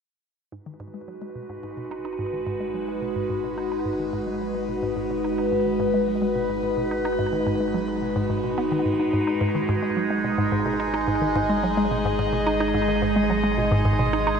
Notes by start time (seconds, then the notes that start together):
0.52 G#1 G#2 G#3 D#4 F#4 B4
0.66 D#3
0.80 G#2
0.94 G#3
1.08 F#3
1.22 G#3
1.36 B2
1.49 G#2
1.63 G#2
1.77 B2
1.91 D#4
2.05 D#4
2.19 G#2
2.33 D#3
2.47 G#2
2.60 G#3
2.74 F#3
2.88 G#3
3.02 B2
3.16 G#2
3.30 G#2
3.44 B2
3.58 D#4
3.72 D#4
3.85 G#2
3.99 D#3
4.13 G#2
4.27 G#3
4.41 F#3
4.55 G#3
4.69 B2
4.83 G#2
4.97 G#2
5.11 B2
5.24 D#4
5.38 D#4
5.52 G#2
5.66 D#3
5.80 G#2
5.94 G#3
6.08 F#3
6.22 G#3
6.36 B2
6.49 G#2
6.63 G#2
6.77 B2
6.91 D#4
7.05 D#4
7.19 G#2
7.33 D#3
7.47 G#2
7.60 G#3
7.74 F#3
7.88 G#3
8.02 B2
8.16 G#2
8.30 G#2
8.44 B2
8.58 B3
8.72 D#3
8.86 G#2
9.00 D#4
9.13 G#2
9.27 D#4
9.41 G#1 G#2 G#4 D#5
9.55 D#3
9.69 G#2
9.83 G#3
9.97 F#3
10.10 G#3
10.24 B2
10.38 G#2
10.52 G#2
10.66 B2
10.80 D#4
10.94 D#4
11.08 G#2
11.22 D#3
11.36 G#2
11.50 G#3
11.63 F#3
11.77 G#3
11.91 B2
12.05 G#2
12.19 G#2
12.33 B2
12.47 D#4
12.60 D#4
12.74 G#2
12.88 D#3
13.02 G#2
13.16 G#3
13.30 F#3
13.44 G#3
13.58 B2
13.72 G#2
13.85 G#2
13.99 B2
14.13 D#4
14.27 D#4